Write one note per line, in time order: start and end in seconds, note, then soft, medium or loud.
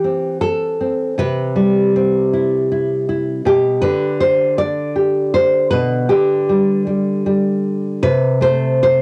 0.00 1.14 E3 medium
0.00 0.41 G4 medium
0.04 0.80 C4 soft
0.41 1.18 A4 medium
0.81 1.14 C4 soft
1.18 3.40 C3 medium
1.18 3.45 B4 medium
1.56 3.82 G3 medium
1.96 3.41 C4 soft
2.33 2.70 E4 soft
2.72 3.08 E4 soft
3.09 3.41 E4 soft
3.45 3.83 B2 medium
3.45 4.59 G4 medium
3.82 6.08 D3 medium
3.82 4.20 B4 medium
4.20 4.58 C5 medium
4.58 5.33 D5 medium
4.96 5.67 G4 soft
5.34 5.70 C5 medium
5.70 6.10 B2 medium
5.70 6.86 B4 medium
6.09 8.03 D3 medium
6.09 7.63 G4 medium
6.49 6.85 G3 soft
6.87 7.25 G3 soft
7.26 8.03 G3 soft
8.03 9.02 C3 medium
8.03 8.42 B4 loud
8.41 9.02 A3 medium
8.41 8.81 C5 medium
8.83 9.02 C5 medium